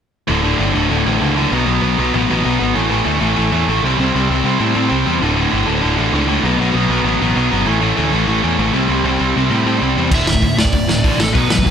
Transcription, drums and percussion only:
10.11 kick, crash
10.27 snare
10.35 kick
10.42 kick, open hi-hat
10.59 snare
10.65 kick
10.72 kick, open hi-hat
10.89 snare
11.04 kick, open hi-hat
11.20 snare
11.35 kick, open hi-hat
11.50 snare
11.58 kick
11.66 kick, open hi-hat

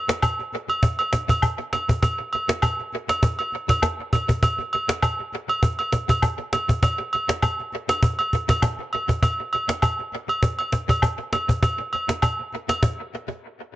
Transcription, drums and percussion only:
0.09 cajon slap
0.22 cajon bass, high agogo, low woodblock
0.39 cajon slap
0.53 cajon slap
0.69 cajon slap, high agogo
0.83 cajon bass
0.99 cajon slap, high agogo
1.13 cajon bass, cajon slap
1.29 cajon bass, high agogo
1.42 cajon bass, low woodblock
1.60 cajon slap
1.73 cajon slap, high agogo
1.89 cajon bass
2.03 cajon bass, high agogo
2.20 cajon slap
2.33 cajon slap, high agogo
2.49 cajon slap
2.62 cajon bass, high agogo, low woodblock
2.79 cajon slap
2.93 cajon slap
3.09 cajon slap, high agogo
3.23 cajon bass
3.39 cajon slap, high agogo
3.52 cajon slap
3.69 cajon bass, cajon slap, high agogo
3.82 cajon bass, cajon slap, low woodblock
4.00 cajon slap
4.13 cajon bass, high agogo
4.29 cajon bass
4.43 cajon bass, high agogo
4.60 cajon slap
4.73 high agogo
4.89 cajon slap
5.02 cajon bass, high agogo, low woodblock
5.19 cajon slap
5.32 cajon slap
5.49 cajon slap, high agogo
5.63 cajon bass
5.79 cajon slap, high agogo
5.92 cajon bass, cajon slap
6.09 cajon bass, high agogo
6.22 cajon bass, low woodblock
6.40 cajon slap
6.53 cajon slap, high agogo
6.69 cajon bass
6.83 cajon bass, high agogo
7.00 cajon slap
7.13 high agogo
7.29 cajon slap
7.42 cajon bass, high agogo, low woodblock
7.59 cajon slap
7.72 cajon slap
7.89 cajon slap, high agogo
8.03 cajon bass
8.19 cajon slap, high agogo
8.33 cajon bass
8.49 cajon bass, cajon slap, high agogo
8.62 cajon bass, cajon slap, low woodblock
8.79 cajon slap
8.93 high agogo
9.09 cajon bass
9.23 cajon bass, high agogo
9.40 cajon slap
9.53 high agogo
9.69 cajon slap
9.82 cajon bass, high agogo, low woodblock
9.99 cajon slap
10.12 cajon slap
10.29 cajon slap, high agogo
10.43 cajon bass
10.59 cajon slap, high agogo
10.72 cajon bass, cajon slap
10.89 cajon bass, high agogo
11.02 cajon bass, low woodblock
11.19 cajon slap
11.33 cajon slap, high agogo
11.49 cajon bass
11.63 cajon bass, high agogo
11.80 cajon slap
11.93 cajon slap, high agogo
12.09 cajon slap
12.22 cajon bass, high agogo, low woodblock
12.39 cajon slap
12.52 cajon slap
12.69 cajon slap, high agogo
12.83 cajon bass, cajon slap

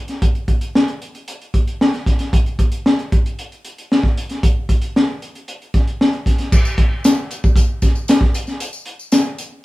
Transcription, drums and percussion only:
0.08 snare, closed hi-hat
0.22 kick, closed hi-hat
0.35 closed hi-hat
0.48 kick, closed hi-hat
0.61 closed hi-hat
0.75 snare
0.88 closed hi-hat
1.02 closed hi-hat
1.15 closed hi-hat
1.28 closed hi-hat
1.42 closed hi-hat
1.54 kick, closed hi-hat
1.68 closed hi-hat
1.81 snare
1.93 snare, closed hi-hat
2.06 kick, snare, closed hi-hat
2.19 snare, closed hi-hat
2.33 kick, closed hi-hat
2.46 closed hi-hat
2.59 kick, closed hi-hat
2.72 closed hi-hat
2.86 snare
2.99 closed hi-hat
3.12 kick, closed hi-hat
3.26 closed hi-hat
3.39 closed hi-hat
3.52 closed hi-hat
3.65 closed hi-hat
3.78 closed hi-hat
3.92 snare
4.03 kick, snare
4.17 closed hi-hat
4.29 snare, closed hi-hat
4.43 kick, closed hi-hat
4.69 kick, closed hi-hat
4.82 closed hi-hat
4.96 snare
5.22 closed hi-hat
5.35 closed hi-hat
5.48 closed hi-hat
5.62 closed hi-hat
5.74 kick, snare, closed hi-hat
5.87 closed hi-hat
6.01 snare
6.13 closed hi-hat
6.26 kick, snare, closed hi-hat
6.38 snare, closed hi-hat
6.52 kick, crash, tambourine
6.65 tambourine
6.78 kick, closed hi-hat
7.04 snare, closed hi-hat, tambourine
7.31 closed hi-hat, tambourine
7.44 kick, tambourine
7.56 kick, closed hi-hat, tambourine
7.82 kick, snare, closed hi-hat, tambourine
7.95 tambourine
8.08 snare, closed hi-hat, tambourine
8.21 kick, snare
8.34 closed hi-hat, tambourine
8.47 snare, tambourine
8.60 closed hi-hat, tambourine
8.73 tambourine
8.86 closed hi-hat
8.99 tambourine
9.12 snare, closed hi-hat, tambourine
9.38 closed hi-hat, tambourine

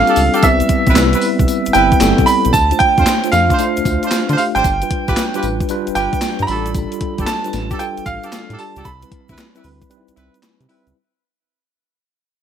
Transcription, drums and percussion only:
0.07 closed hi-hat, shaker
0.16 open hi-hat, tambourine, shaker
0.34 closed hi-hat, shaker
0.43 kick, closed hi-hat, tambourine, shaker
0.60 closed hi-hat, shaker
0.69 kick, closed hi-hat, shaker
0.87 kick, closed hi-hat, shaker
0.96 snare, clap, closed hi-hat, tambourine, shaker
1.13 closed hi-hat, shaker
1.22 open hi-hat, tambourine
1.39 kick, closed hi-hat, shaker
1.48 closed hi-hat, tambourine, shaker
1.66 closed hi-hat, shaker
1.74 closed hi-hat, tambourine, shaker
1.92 kick, closed hi-hat, shaker
2.01 snare, clap, closed hi-hat, tambourine, shaker
2.18 kick, closed hi-hat, shaker
2.27 open hi-hat, tambourine, shaker
2.45 closed hi-hat, shaker
2.54 kick, closed hi-hat, tambourine, shaker
2.71 closed hi-hat, shaker
2.80 kick, closed hi-hat
2.98 kick, closed hi-hat, shaker
3.06 snare, clap, closed hi-hat, tambourine, shaker
3.24 closed hi-hat, shaker
3.32 snare, closed hi-hat, tambourine, shaker
3.50 kick, closed hi-hat, shaker
3.59 closed hi-hat, tambourine, shaker
3.77 closed hi-hat, shaker
3.85 kick, closed hi-hat, tambourine, shaker
4.03 closed hi-hat, shaker
4.11 snare, clap, closed hi-hat, tambourine, shaker
4.29 closed hi-hat, shaker
4.38 open hi-hat, tambourine
4.56 closed hi-hat, shaker
4.64 kick, closed hi-hat, tambourine, shaker
4.82 closed hi-hat, shaker
4.91 kick, closed hi-hat
5.08 kick, closed hi-hat, shaker
5.17 snare, clap, closed hi-hat, tambourine, shaker
5.34 closed hi-hat, shaker
5.43 closed hi-hat, tambourine, shaker
5.60 kick, closed hi-hat, shaker
5.69 closed hi-hat, tambourine, shaker
5.87 closed hi-hat, shaker
5.95 closed hi-hat, tambourine, shaker
6.13 kick, closed hi-hat, shaker
6.22 snare, clap, closed hi-hat, tambourine, shaker
6.39 closed hi-hat, shaker
6.48 open hi-hat, tambourine
6.66 closed hi-hat, shaker
6.75 kick, closed hi-hat, tambourine, shaker
6.92 closed hi-hat, shaker
7.01 kick, closed hi-hat
7.18 kick, closed hi-hat, shaker
7.27 snare, clap, closed hi-hat, tambourine, shaker
7.44 closed hi-hat, shaker
7.53 snare, closed hi-hat, tambourine, shaker
7.71 kick, closed hi-hat, shaker
7.80 closed hi-hat, tambourine, shaker
7.98 closed hi-hat, shaker
8.06 kick, closed hi-hat, tambourine, shaker
8.23 closed hi-hat, shaker
8.32 snare, clap, closed hi-hat, tambourine, shaker
8.50 closed hi-hat, shaker
8.59 open hi-hat, tambourine
8.76 closed hi-hat, shaker
8.85 kick, closed hi-hat, shaker
9.02 closed hi-hat, shaker
9.12 kick, closed hi-hat
9.29 kick, closed hi-hat, shaker
9.37 snare, clap, closed hi-hat, shaker
9.55 closed hi-hat, shaker
9.64 open hi-hat, shaker
9.82 kick, closed hi-hat, shaker
9.90 closed hi-hat, shaker
10.08 closed hi-hat, shaker
10.17 closed hi-hat, shaker
10.34 closed hi-hat, shaker
10.43 snare, clap, closed hi-hat, shaker
10.61 closed hi-hat, shaker
10.69 open hi-hat
10.87 closed hi-hat, shaker

